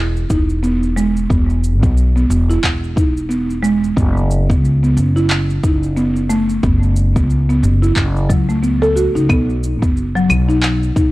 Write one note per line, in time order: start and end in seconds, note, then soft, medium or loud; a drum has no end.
0.00 0.26 E1 medium
0.00 0.29 E4 medium
0.17 cabasa soft
0.30 1.26 E1 medium
0.30 0.62 D#4 medium
0.30 kick loud
0.30 cabasa medium
0.50 cabasa soft
0.63 0.95 B3 medium
0.63 cabasa soft
0.83 cabasa soft
0.96 1.28 G#3 medium
0.96 cabasa medium
1.17 cabasa soft
1.30 1.83 E1 medium
1.30 1.48 B3 medium
1.30 kick loud
1.30 cabasa soft
1.50 cabasa soft
1.64 cabasa medium
1.83 2.26 B1 medium
1.83 1.96 B3 medium
1.83 kick loud
1.83 cabasa soft
1.97 cabasa soft
2.16 2.29 B3 medium
2.16 cabasa soft
2.30 2.58 E1 loud
2.30 cabasa medium
2.50 2.95 E4 medium
2.50 cabasa soft
2.64 3.93 E1 medium
2.64 kick medium
2.64 clap medium
2.64 cabasa soft
2.84 cabasa soft
2.96 3.28 D#4 medium
2.96 kick loud
2.96 cabasa medium
3.17 cabasa soft
3.29 3.61 B3 medium
3.29 cabasa soft
3.50 cabasa soft
3.63 3.95 G#3 medium
3.63 cabasa medium
3.84 cabasa soft
3.97 4.51 F#1 loud
3.97 4.15 B3 medium
3.97 kick loud
3.97 cabasa soft
4.17 cabasa soft
4.31 cabasa medium
4.50 4.93 C#2 medium
4.50 4.63 B3 medium
4.50 kick loud
4.50 cabasa soft
4.65 cabasa soft
4.83 4.96 B3 medium
4.83 cabasa soft
4.97 5.59 F#1 medium
4.97 cabasa medium
5.16 5.62 E4 medium
5.16 cabasa soft
5.30 clap medium
5.30 cabasa soft
5.50 cabasa soft
5.63 6.59 F#1 medium
5.63 5.95 D#4 medium
5.63 kick loud
5.63 cabasa medium
5.83 cabasa soft
5.97 6.28 B3 medium
5.97 cabasa soft
6.16 cabasa soft
6.30 6.62 A3 medium
6.30 cabasa medium
6.49 cabasa soft
6.63 7.17 F#1 loud
6.63 6.82 B3 medium
6.63 kick loud
6.63 cabasa soft
6.83 cabasa soft
6.96 cabasa medium
7.16 7.59 C#2 medium
7.16 7.29 B3 medium
7.16 kick loud
7.16 cabasa soft
7.30 cabasa soft
7.49 7.62 B3 medium
7.49 cabasa soft
7.63 7.92 F#1 loud
7.63 cabasa medium
7.82 8.28 E4 medium
7.82 cabasa soft
7.96 8.29 F#1 medium
7.96 kick medium
7.96 clap medium
7.96 cabasa soft
8.17 cabasa soft
8.29 9.10 C#2 medium
8.29 8.48 F#3 medium
8.29 kick loud
8.29 cabasa medium
8.49 8.61 A3 medium
8.49 cabasa soft
8.63 8.74 B3 medium
8.63 cabasa soft
8.82 8.95 A4 loud
8.82 cabasa soft
8.96 9.15 F#4 medium
8.96 cabasa medium
9.15 9.27 C#2 medium
9.15 9.28 D#4 medium
9.15 cabasa soft
9.29 9.82 B1 loud
9.29 9.48 B3 medium
9.29 kick loud
9.29 cabasa soft
9.29 claves medium
9.50 cabasa soft
9.63 cabasa medium
9.82 10.26 F#1 medium
9.82 9.96 B3 medium
9.82 kick medium
9.82 cabasa soft
9.97 cabasa soft
10.15 10.47 F#3 loud
10.15 cabasa soft
10.29 10.92 B1 loud
10.29 cabasa medium
10.29 claves medium
10.49 10.95 D#4 medium
10.49 cabasa soft
10.63 clap medium
10.63 cabasa soft
10.83 cabasa soft
10.96 11.12 B1 medium
10.96 11.12 D#4 medium
10.96 kick loud
10.96 cabasa medium